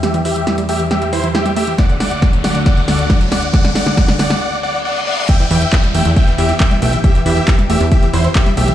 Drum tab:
CC |----------------|----------------|----------------|x---------------|
HH |xxoxxxoxxxoxxxox|xxoxxxoxxxoxxxox|xxo-xxox--------|xxoxxxoxxxoxxxox|
CP |----------------|----------------|----------------|----x-------x---|
SD |o---o---o---o---|o-o-o-o-o-o-o-o-|oooooooo--------|----------------|
BD |----------------|o---o---o---o---|o---o-----------|o---o---o---o---|

CC |----------------|
HH |xxoxxxoxxxoxxxox|
CP |----x-------x---|
SD |----------------|
BD |o---o---o---o---|